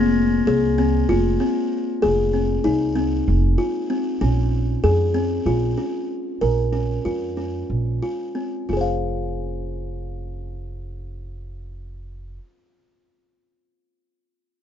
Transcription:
0.00 0.39 F1 medium
0.00 0.33 C4 medium
0.00 0.12 F6 medium
0.00 0.31 G#6 medium
0.00 0.49 A#6 medium
0.47 1.01 C2 medium
0.47 0.71 G#4 medium
0.78 1.02 C4 medium
1.09 1.36 F1 medium
1.09 1.33 F4 medium
1.40 1.88 C4 medium
2.02 2.57 F1 medium
2.02 2.26 G#4 medium
2.33 2.57 C4 soft
2.64 3.19 C2 medium
2.64 2.88 D#4 medium
2.96 3.44 C4 medium
3.28 3.54 F1 medium
3.58 3.82 F4 medium
3.90 4.14 C4 medium
4.21 4.75 A#1 medium
4.21 4.69 C#4 medium
4.84 5.38 F2 medium
4.84 5.08 G#4 medium
5.14 5.39 C4 medium
5.46 5.73 A#1 medium
5.46 5.70 F4 medium
5.78 6.26 C#4 medium
6.41 6.97 A#1 medium
6.41 6.66 A#4 medium
6.73 6.97 C#4 soft
7.05 7.61 F2 medium
7.05 7.30 F4 medium
7.37 7.87 C#4 soft
7.70 7.98 A#1 medium
8.02 8.28 F4 soft
8.35 8.60 C4 soft
8.69 12.37 F1 medium
8.69 12.37 F4 soft
8.73 12.41 G#4 soft
8.73 12.45 C5 soft
8.81 12.49 F5 soft

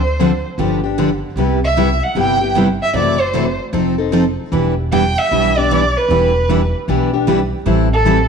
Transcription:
0.00 0.42 D2 medium
0.00 0.44 C5 medium
0.19 0.30 D3 medium
0.19 0.30 F3 medium
0.19 0.30 C4 medium
0.19 0.31 D4 medium
0.19 0.31 A4 medium
0.58 1.21 G1 medium
0.58 0.80 D3 medium
0.58 0.80 F3 medium
0.58 0.80 B3 medium
0.58 0.80 D4 medium
0.58 0.80 G4 medium
0.83 0.98 B3 soft
0.83 0.98 D4 soft
0.83 0.97 G4 medium
0.98 1.09 D3 medium
0.98 1.09 F3 medium
0.98 1.09 B3 medium
0.98 1.09 D4 medium
0.98 1.10 G4 medium
1.36 1.99 C2 medium
1.36 1.59 C3 medium
1.36 1.59 G3 medium
1.36 1.59 B3 medium
1.36 1.59 E4 medium
1.36 1.59 G4 medium
1.64 2.05 E5 medium
1.77 1.88 C3 medium
1.77 1.88 G3 medium
1.77 1.88 B3 medium
1.77 1.88 E4 medium
1.77 1.89 G4 medium
2.03 2.17 F#5 medium
2.15 2.78 G1 medium
2.15 2.37 C3 medium
2.15 2.37 G3 medium
2.15 2.38 B3 medium
2.15 2.38 E4 medium
2.15 2.38 G4 medium
2.15 2.54 G5 medium
2.41 2.56 B3 soft
2.41 2.55 E4 medium
2.41 2.55 G4 medium
2.57 2.67 C3 medium
2.57 2.67 G3 medium
2.57 2.67 B3 medium
2.57 2.68 E4 medium
2.57 2.68 G4 medium
2.82 2.95 E5 medium
2.93 3.57 F#1 medium
2.93 3.16 C3 medium
2.93 3.16 E3 medium
2.93 3.15 F#3 medium
2.93 3.16 A3 medium
2.93 3.15 C4 medium
2.93 3.17 E4 medium
2.93 3.17 F#4 medium
2.93 3.16 A4 medium
2.93 3.22 D5 medium
3.20 3.59 C5 medium
3.33 3.45 C3 medium
3.33 3.45 E3 medium
3.33 3.45 F#3 medium
3.33 3.46 A3 medium
3.33 3.45 C4 medium
3.33 3.46 E4 medium
3.33 3.46 F#4 medium
3.33 3.46 A4 medium
3.73 4.36 F1 medium
3.73 3.94 F3 medium
3.73 3.95 C4 medium
3.73 3.95 D#4 medium
3.73 3.95 A4 medium
3.98 4.11 C4 soft
3.98 4.11 D#4 medium
3.98 4.12 A4 medium
4.12 4.23 F3 medium
4.12 4.24 C4 medium
4.12 4.24 D#4 medium
4.12 4.24 A4 medium
4.52 5.15 E1 medium
4.52 4.73 E3 medium
4.52 4.74 G3 medium
4.52 4.73 B3 medium
4.52 4.73 D4 medium
4.52 4.73 E4 medium
4.52 4.74 G4 medium
4.52 4.74 B4 medium
4.92 5.03 E3 medium
4.92 5.03 G3 medium
4.92 5.03 B3 medium
4.92 5.03 D4 medium
4.92 5.03 E4 medium
4.92 5.03 G4 medium
4.92 5.03 B4 medium
4.92 5.20 G5 medium
5.18 5.59 E5 loud
5.31 5.94 B1 medium
5.31 5.52 E3 medium
5.31 5.52 G3 medium
5.31 5.52 B3 medium
5.31 5.52 D4 medium
5.31 5.53 E4 medium
5.31 5.53 G4 medium
5.31 5.53 B4 medium
5.57 5.71 B3 soft
5.57 5.71 D4 medium
5.57 5.70 G4 medium
5.57 5.99 D5 medium
5.71 5.82 E3 medium
5.71 5.82 G3 medium
5.71 5.82 B3 medium
5.71 5.82 D4 medium
5.71 5.82 E4 medium
5.71 5.82 G4 medium
5.71 5.82 B4 medium
5.97 6.75 B4 medium
6.09 6.72 E1 medium
6.09 6.31 E3 medium
6.09 6.31 G3 medium
6.09 6.31 B3 medium
6.09 6.31 D4 medium
6.09 6.31 E4 medium
6.09 6.31 G4 medium
6.09 6.31 B4 medium
6.49 6.60 E3 medium
6.49 6.60 G3 medium
6.49 6.60 B3 medium
6.49 6.60 D4 medium
6.49 6.61 E4 medium
6.49 6.60 G4 medium
6.49 6.61 B4 medium
6.88 7.51 B1 medium
6.88 7.09 E3 medium
6.88 7.10 G3 medium
6.88 7.10 B3 medium
6.88 7.10 D4 medium
6.88 7.10 E4 medium
6.88 7.10 G4 medium
6.88 7.10 B4 medium
7.13 7.27 B3 soft
7.13 7.27 D4 soft
7.13 7.27 G4 medium
7.27 7.38 E3 medium
7.27 7.38 G3 medium
7.27 7.39 B3 medium
7.27 7.39 D4 medium
7.27 7.39 E4 medium
7.27 7.39 G4 medium
7.27 7.39 B4 medium
7.66 8.28 A1 medium
7.66 7.88 E3 medium
7.66 7.88 G3 medium
7.66 7.88 C4 medium
7.66 7.88 E4 medium
7.66 7.88 A4 medium
7.93 8.28 A4 medium
8.05 8.17 E3 medium
8.05 8.17 G3 medium
8.05 8.17 C4 medium
8.05 8.17 E4 medium
8.05 8.17 A4 medium

